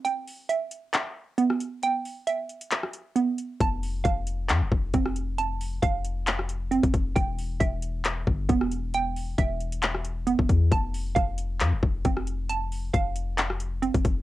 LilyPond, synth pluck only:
\new Staff \with { instrumentName = "Synth pluck" } { \time 4/4 \key e \phrygian \tempo 4 = 135 g''4 e''2 b4 | g''4 e''2 b4 | a''4 f''2 c'4 | a''4 f''2 c'4 |
g''4 e''2 b4 | g''4 e''2 b4 | a''4 f''2 c'4 | a''4 f''2 c'4 | }